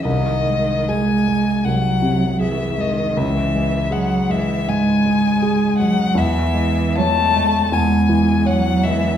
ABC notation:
X:1
M:4/4
L:1/8
Q:1/4=79
K:C#m
V:1 name="Violin"
d2 g2 f2 e d | e2 f e g3 f | e2 a2 g2 f e |]
V:2 name="Grand piano" clef=bass
^B,,, G, G G, B,,, ^B,, G G, | C,, G, G G, G,, G, G G, | E,, G, c G, E,, E, c G, |]
V:3 name="Cello" clef=bass
D,2 G,2 F,2 E, D, | E,2 F, E, G,3 F, | E,2 A,2 G,2 F, E, |]